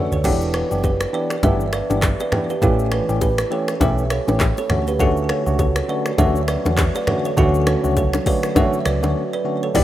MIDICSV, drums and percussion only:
0, 0, Header, 1, 2, 480
1, 0, Start_track
1, 0, Key_signature, 2, "major"
1, 0, Tempo, 594059
1, 196, Time_signature, 4, 2, 24, 8
1, 7950, End_track
2, 0, Start_track
2, 0, Title_t, "Drums"
2, 95, Note_on_c, 9, 43, 83
2, 96, Note_on_c, 9, 82, 59
2, 176, Note_off_c, 9, 43, 0
2, 177, Note_off_c, 9, 82, 0
2, 195, Note_on_c, 9, 49, 91
2, 196, Note_on_c, 9, 36, 119
2, 196, Note_on_c, 9, 82, 66
2, 202, Note_on_c, 9, 64, 77
2, 276, Note_off_c, 9, 36, 0
2, 276, Note_off_c, 9, 49, 0
2, 277, Note_off_c, 9, 82, 0
2, 283, Note_off_c, 9, 64, 0
2, 334, Note_on_c, 9, 82, 57
2, 415, Note_off_c, 9, 82, 0
2, 435, Note_on_c, 9, 26, 76
2, 437, Note_on_c, 9, 37, 95
2, 516, Note_off_c, 9, 26, 0
2, 517, Note_off_c, 9, 37, 0
2, 576, Note_on_c, 9, 82, 59
2, 657, Note_off_c, 9, 82, 0
2, 675, Note_on_c, 9, 60, 70
2, 676, Note_on_c, 9, 36, 92
2, 676, Note_on_c, 9, 82, 72
2, 756, Note_off_c, 9, 60, 0
2, 757, Note_off_c, 9, 36, 0
2, 757, Note_off_c, 9, 82, 0
2, 813, Note_on_c, 9, 26, 74
2, 814, Note_on_c, 9, 37, 95
2, 815, Note_on_c, 9, 82, 55
2, 893, Note_off_c, 9, 26, 0
2, 895, Note_off_c, 9, 37, 0
2, 896, Note_off_c, 9, 82, 0
2, 1054, Note_on_c, 9, 26, 72
2, 1055, Note_on_c, 9, 37, 85
2, 1057, Note_on_c, 9, 82, 54
2, 1134, Note_off_c, 9, 26, 0
2, 1136, Note_off_c, 9, 37, 0
2, 1137, Note_off_c, 9, 82, 0
2, 1156, Note_on_c, 9, 36, 113
2, 1156, Note_on_c, 9, 61, 93
2, 1156, Note_on_c, 9, 64, 93
2, 1159, Note_on_c, 9, 82, 73
2, 1237, Note_off_c, 9, 36, 0
2, 1237, Note_off_c, 9, 61, 0
2, 1237, Note_off_c, 9, 64, 0
2, 1240, Note_off_c, 9, 82, 0
2, 1296, Note_on_c, 9, 82, 52
2, 1377, Note_off_c, 9, 82, 0
2, 1395, Note_on_c, 9, 26, 78
2, 1397, Note_on_c, 9, 37, 100
2, 1397, Note_on_c, 9, 82, 55
2, 1476, Note_off_c, 9, 26, 0
2, 1478, Note_off_c, 9, 37, 0
2, 1478, Note_off_c, 9, 82, 0
2, 1537, Note_on_c, 9, 82, 51
2, 1541, Note_on_c, 9, 61, 83
2, 1618, Note_off_c, 9, 82, 0
2, 1621, Note_off_c, 9, 61, 0
2, 1634, Note_on_c, 9, 26, 79
2, 1635, Note_on_c, 9, 37, 99
2, 1635, Note_on_c, 9, 39, 96
2, 1637, Note_on_c, 9, 82, 73
2, 1638, Note_on_c, 9, 36, 99
2, 1641, Note_on_c, 9, 60, 81
2, 1715, Note_off_c, 9, 26, 0
2, 1716, Note_off_c, 9, 37, 0
2, 1716, Note_off_c, 9, 39, 0
2, 1717, Note_off_c, 9, 82, 0
2, 1719, Note_off_c, 9, 36, 0
2, 1722, Note_off_c, 9, 60, 0
2, 1776, Note_on_c, 9, 82, 49
2, 1779, Note_on_c, 9, 60, 52
2, 1857, Note_off_c, 9, 82, 0
2, 1860, Note_off_c, 9, 60, 0
2, 1874, Note_on_c, 9, 26, 72
2, 1876, Note_on_c, 9, 37, 90
2, 1877, Note_on_c, 9, 64, 83
2, 1955, Note_off_c, 9, 26, 0
2, 1957, Note_off_c, 9, 37, 0
2, 1958, Note_off_c, 9, 64, 0
2, 2017, Note_on_c, 9, 82, 55
2, 2098, Note_off_c, 9, 82, 0
2, 2116, Note_on_c, 9, 36, 120
2, 2117, Note_on_c, 9, 82, 69
2, 2122, Note_on_c, 9, 64, 80
2, 2197, Note_off_c, 9, 36, 0
2, 2198, Note_off_c, 9, 82, 0
2, 2203, Note_off_c, 9, 64, 0
2, 2255, Note_on_c, 9, 82, 55
2, 2336, Note_off_c, 9, 82, 0
2, 2356, Note_on_c, 9, 26, 79
2, 2358, Note_on_c, 9, 37, 95
2, 2437, Note_off_c, 9, 26, 0
2, 2438, Note_off_c, 9, 37, 0
2, 2498, Note_on_c, 9, 82, 61
2, 2578, Note_off_c, 9, 82, 0
2, 2597, Note_on_c, 9, 36, 91
2, 2597, Note_on_c, 9, 60, 72
2, 2598, Note_on_c, 9, 82, 72
2, 2678, Note_off_c, 9, 36, 0
2, 2678, Note_off_c, 9, 60, 0
2, 2678, Note_off_c, 9, 82, 0
2, 2733, Note_on_c, 9, 26, 76
2, 2735, Note_on_c, 9, 37, 97
2, 2736, Note_on_c, 9, 82, 57
2, 2814, Note_off_c, 9, 26, 0
2, 2816, Note_off_c, 9, 37, 0
2, 2817, Note_off_c, 9, 82, 0
2, 2974, Note_on_c, 9, 26, 72
2, 2976, Note_on_c, 9, 37, 90
2, 2977, Note_on_c, 9, 82, 54
2, 3055, Note_off_c, 9, 26, 0
2, 3057, Note_off_c, 9, 37, 0
2, 3058, Note_off_c, 9, 82, 0
2, 3077, Note_on_c, 9, 36, 113
2, 3077, Note_on_c, 9, 61, 91
2, 3077, Note_on_c, 9, 64, 90
2, 3080, Note_on_c, 9, 82, 73
2, 3158, Note_off_c, 9, 36, 0
2, 3158, Note_off_c, 9, 61, 0
2, 3158, Note_off_c, 9, 64, 0
2, 3161, Note_off_c, 9, 82, 0
2, 3217, Note_on_c, 9, 82, 55
2, 3298, Note_off_c, 9, 82, 0
2, 3316, Note_on_c, 9, 26, 76
2, 3317, Note_on_c, 9, 37, 98
2, 3317, Note_on_c, 9, 82, 56
2, 3396, Note_off_c, 9, 26, 0
2, 3398, Note_off_c, 9, 37, 0
2, 3398, Note_off_c, 9, 82, 0
2, 3458, Note_on_c, 9, 82, 53
2, 3462, Note_on_c, 9, 61, 82
2, 3539, Note_off_c, 9, 82, 0
2, 3543, Note_off_c, 9, 61, 0
2, 3554, Note_on_c, 9, 26, 80
2, 3555, Note_on_c, 9, 37, 96
2, 3555, Note_on_c, 9, 39, 94
2, 3556, Note_on_c, 9, 82, 75
2, 3559, Note_on_c, 9, 36, 104
2, 3563, Note_on_c, 9, 60, 79
2, 3635, Note_off_c, 9, 26, 0
2, 3636, Note_off_c, 9, 37, 0
2, 3636, Note_off_c, 9, 39, 0
2, 3637, Note_off_c, 9, 82, 0
2, 3639, Note_off_c, 9, 36, 0
2, 3644, Note_off_c, 9, 60, 0
2, 3697, Note_on_c, 9, 82, 50
2, 3701, Note_on_c, 9, 60, 52
2, 3777, Note_off_c, 9, 82, 0
2, 3782, Note_off_c, 9, 60, 0
2, 3795, Note_on_c, 9, 26, 72
2, 3796, Note_on_c, 9, 37, 91
2, 3798, Note_on_c, 9, 64, 78
2, 3875, Note_off_c, 9, 26, 0
2, 3877, Note_off_c, 9, 37, 0
2, 3879, Note_off_c, 9, 64, 0
2, 3937, Note_on_c, 9, 82, 55
2, 4018, Note_off_c, 9, 82, 0
2, 4037, Note_on_c, 9, 36, 120
2, 4037, Note_on_c, 9, 82, 73
2, 4044, Note_on_c, 9, 64, 80
2, 4117, Note_off_c, 9, 36, 0
2, 4118, Note_off_c, 9, 82, 0
2, 4125, Note_off_c, 9, 64, 0
2, 4176, Note_on_c, 9, 82, 56
2, 4256, Note_off_c, 9, 82, 0
2, 4276, Note_on_c, 9, 26, 78
2, 4278, Note_on_c, 9, 37, 99
2, 4357, Note_off_c, 9, 26, 0
2, 4358, Note_off_c, 9, 37, 0
2, 4417, Note_on_c, 9, 82, 58
2, 4498, Note_off_c, 9, 82, 0
2, 4517, Note_on_c, 9, 36, 94
2, 4517, Note_on_c, 9, 60, 72
2, 4517, Note_on_c, 9, 82, 70
2, 4598, Note_off_c, 9, 36, 0
2, 4598, Note_off_c, 9, 60, 0
2, 4598, Note_off_c, 9, 82, 0
2, 4653, Note_on_c, 9, 26, 77
2, 4654, Note_on_c, 9, 37, 94
2, 4655, Note_on_c, 9, 82, 55
2, 4733, Note_off_c, 9, 26, 0
2, 4735, Note_off_c, 9, 37, 0
2, 4736, Note_off_c, 9, 82, 0
2, 4894, Note_on_c, 9, 26, 71
2, 4895, Note_on_c, 9, 37, 90
2, 4897, Note_on_c, 9, 82, 55
2, 4974, Note_off_c, 9, 26, 0
2, 4976, Note_off_c, 9, 37, 0
2, 4977, Note_off_c, 9, 82, 0
2, 4997, Note_on_c, 9, 36, 111
2, 4997, Note_on_c, 9, 61, 91
2, 4997, Note_on_c, 9, 64, 90
2, 4999, Note_on_c, 9, 82, 78
2, 5077, Note_off_c, 9, 61, 0
2, 5077, Note_off_c, 9, 64, 0
2, 5078, Note_off_c, 9, 36, 0
2, 5080, Note_off_c, 9, 82, 0
2, 5136, Note_on_c, 9, 82, 55
2, 5217, Note_off_c, 9, 82, 0
2, 5235, Note_on_c, 9, 26, 79
2, 5237, Note_on_c, 9, 37, 100
2, 5237, Note_on_c, 9, 82, 58
2, 5316, Note_off_c, 9, 26, 0
2, 5318, Note_off_c, 9, 37, 0
2, 5318, Note_off_c, 9, 82, 0
2, 5377, Note_on_c, 9, 82, 52
2, 5382, Note_on_c, 9, 61, 83
2, 5458, Note_off_c, 9, 82, 0
2, 5463, Note_off_c, 9, 61, 0
2, 5473, Note_on_c, 9, 26, 76
2, 5475, Note_on_c, 9, 37, 98
2, 5475, Note_on_c, 9, 39, 98
2, 5476, Note_on_c, 9, 82, 71
2, 5479, Note_on_c, 9, 36, 100
2, 5482, Note_on_c, 9, 60, 78
2, 5554, Note_off_c, 9, 26, 0
2, 5556, Note_off_c, 9, 37, 0
2, 5556, Note_off_c, 9, 39, 0
2, 5557, Note_off_c, 9, 82, 0
2, 5559, Note_off_c, 9, 36, 0
2, 5563, Note_off_c, 9, 60, 0
2, 5616, Note_on_c, 9, 82, 49
2, 5619, Note_on_c, 9, 60, 55
2, 5697, Note_off_c, 9, 82, 0
2, 5700, Note_off_c, 9, 60, 0
2, 5714, Note_on_c, 9, 26, 75
2, 5716, Note_on_c, 9, 37, 86
2, 5717, Note_on_c, 9, 64, 79
2, 5795, Note_off_c, 9, 26, 0
2, 5796, Note_off_c, 9, 37, 0
2, 5798, Note_off_c, 9, 64, 0
2, 5857, Note_on_c, 9, 82, 58
2, 5938, Note_off_c, 9, 82, 0
2, 5957, Note_on_c, 9, 36, 120
2, 5957, Note_on_c, 9, 82, 69
2, 5962, Note_on_c, 9, 64, 80
2, 6037, Note_off_c, 9, 36, 0
2, 6037, Note_off_c, 9, 82, 0
2, 6043, Note_off_c, 9, 64, 0
2, 6095, Note_on_c, 9, 82, 56
2, 6176, Note_off_c, 9, 82, 0
2, 6195, Note_on_c, 9, 26, 77
2, 6196, Note_on_c, 9, 61, 55
2, 6196, Note_on_c, 9, 82, 60
2, 6197, Note_on_c, 9, 37, 96
2, 6276, Note_off_c, 9, 26, 0
2, 6277, Note_off_c, 9, 61, 0
2, 6277, Note_off_c, 9, 82, 0
2, 6278, Note_off_c, 9, 37, 0
2, 6337, Note_on_c, 9, 82, 59
2, 6418, Note_off_c, 9, 82, 0
2, 6437, Note_on_c, 9, 36, 94
2, 6437, Note_on_c, 9, 60, 74
2, 6437, Note_on_c, 9, 82, 73
2, 6518, Note_off_c, 9, 36, 0
2, 6518, Note_off_c, 9, 60, 0
2, 6518, Note_off_c, 9, 82, 0
2, 6573, Note_on_c, 9, 26, 77
2, 6574, Note_on_c, 9, 37, 92
2, 6575, Note_on_c, 9, 82, 56
2, 6581, Note_on_c, 9, 61, 76
2, 6653, Note_off_c, 9, 26, 0
2, 6655, Note_off_c, 9, 37, 0
2, 6656, Note_off_c, 9, 82, 0
2, 6662, Note_off_c, 9, 61, 0
2, 6675, Note_on_c, 9, 46, 89
2, 6676, Note_on_c, 9, 36, 108
2, 6682, Note_on_c, 9, 60, 60
2, 6755, Note_off_c, 9, 46, 0
2, 6757, Note_off_c, 9, 36, 0
2, 6762, Note_off_c, 9, 60, 0
2, 6814, Note_on_c, 9, 26, 72
2, 6815, Note_on_c, 9, 37, 89
2, 6817, Note_on_c, 9, 82, 56
2, 6894, Note_off_c, 9, 26, 0
2, 6896, Note_off_c, 9, 37, 0
2, 6897, Note_off_c, 9, 82, 0
2, 6917, Note_on_c, 9, 36, 120
2, 6917, Note_on_c, 9, 61, 92
2, 6917, Note_on_c, 9, 64, 89
2, 6919, Note_on_c, 9, 82, 76
2, 6998, Note_off_c, 9, 36, 0
2, 6998, Note_off_c, 9, 61, 0
2, 6998, Note_off_c, 9, 64, 0
2, 7000, Note_off_c, 9, 82, 0
2, 7056, Note_on_c, 9, 82, 57
2, 7136, Note_off_c, 9, 82, 0
2, 7155, Note_on_c, 9, 26, 77
2, 7156, Note_on_c, 9, 37, 100
2, 7156, Note_on_c, 9, 82, 58
2, 7235, Note_off_c, 9, 26, 0
2, 7237, Note_off_c, 9, 37, 0
2, 7237, Note_off_c, 9, 82, 0
2, 7297, Note_on_c, 9, 82, 52
2, 7302, Note_on_c, 9, 61, 84
2, 7378, Note_off_c, 9, 82, 0
2, 7383, Note_off_c, 9, 61, 0
2, 7876, Note_on_c, 9, 36, 126
2, 7876, Note_on_c, 9, 49, 98
2, 7876, Note_on_c, 9, 82, 71
2, 7883, Note_on_c, 9, 64, 81
2, 7950, Note_off_c, 9, 36, 0
2, 7950, Note_off_c, 9, 49, 0
2, 7950, Note_off_c, 9, 64, 0
2, 7950, Note_off_c, 9, 82, 0
2, 7950, End_track
0, 0, End_of_file